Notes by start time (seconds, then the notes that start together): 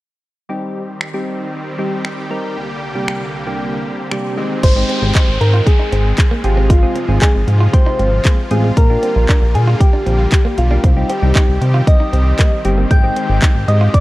0.49 D#3 G3 C4 D#4 G4
1.01 finger snap
1.14 G3 C4 D#4 G4
1.78 G3 C4 D#4 G4
2.05 finger snap
2.30 G3 C4 D#4 A#4
2.56 C2 D3 A#3, swell
2.95 C3 G3 A#3 D4 G4
3.08 finger snap
3.46 C3 G3 A#3 D4 G4
4.11 C3 G3 A#3 D4 G4, finger snap
4.37 D#3 G#3 C4 D#4 G4
4.63 G#1 D#3 G#3 C4 C5 G5, kick, closed hi-hat, crash, downlifter
4.76 G#3 C4 D#4 G4, muted clean electric guitar stroke
4.89 C4, closed hi-hat
5.02 G#1
5.15 D#4, kick, clap, closed hi-hat
5.28 G#1
5.41 G#2 A#4, muted clean electric guitar stroke, closed hi-hat
5.54 F4
5.67 G#4, muted clean electric guitar stroke, kick, closed hi-hat
5.79 D#4
5.92 G#1 C4, closed hi-hat
6.18 kick, clap, closed hi-hat
6.31 A#3
6.44 G#1 C3 F3 G#3 C4 F4 G4 G#4, muted clean electric guitar stroke, closed hi-hat
6.57 C4
6.70 G#3 F4, kick, closed hi-hat
6.83 G#3 C4 F4 G#4, muted clean electric guitar stroke
6.96 C4, closed hi-hat
7.09 G#1 G#3 C4 F4 G#4
7.22 D#4 G#4, kick, clap, closed hi-hat
7.35 G#1
7.48 G#2, muted clean electric guitar stroke, closed hi-hat
7.60 F4
7.73 G#3 C4 F4 G4 C5, muted clean electric guitar stroke, kick, closed hi-hat
7.86 D#4
7.99 G#1 C4, closed hi-hat
8.25 G#3 A#3 C4 F4 G#4, kick, clap, closed hi-hat
8.38 muted clean electric guitar stroke
8.51 A1 G#3 C4 F4 G#4, closed hi-hat
8.64 G#3
8.77 A#1 D3 G3 A#3 A#4, kick, closed hi-hat
8.90 A#3 D4 F4 G4, muted clean electric guitar stroke
9.03 C4, closed hi-hat
9.16 A#1
9.29 D4, kick, clap, closed hi-hat
9.42 A#1
9.54 A#2 G#4, muted clean electric guitar stroke, closed hi-hat
9.67 F4
9.80 G4, muted clean electric guitar stroke, kick, closed hi-hat
9.93 D4
10.06 A#1 C4, closed hi-hat
10.32 kick, clap, closed hi-hat
10.45 A#3
10.58 B1 F4, muted clean electric guitar stroke, closed hi-hat
10.71 A#3 D4 F4 G4
10.84 C2 D#3 C4 G4, kick, closed hi-hat
10.96 G3 C4 D#4 G4, muted clean electric guitar stroke
11.10 C4 G4, closed hi-hat
11.22 C2 G3 C4 D#4 G4
11.35 D#4, kick, clap, closed hi-hat
11.48 C2
11.61 C3, muted clean electric guitar stroke, closed hi-hat
11.74 F4
11.87 G3 C4 D#4 G4 D#5, muted clean electric guitar stroke, kick, closed hi-hat
12.00 D#4
12.13 C2 C4, closed hi-hat
12.39 G3 A#3 C4 D#4 G4, kick, clap, closed hi-hat
12.52 muted clean electric guitar stroke
12.65 G1 G3 C4 D#4 G4, closed hi-hat
12.78 A#3
12.91 G#1 G#3 G4 G5, kick, closed hi-hat
13.03 G#3 C4 D#4 G4, muted clean electric guitar stroke
13.16 C4, closed hi-hat
13.29 G#1
13.42 D#4, kick, clap, closed hi-hat
13.55 G#1
13.68 G#2 D#5, muted clean electric guitar stroke, closed hi-hat
13.81 F4
13.94 D5, muted clean electric guitar stroke, kick, closed hi-hat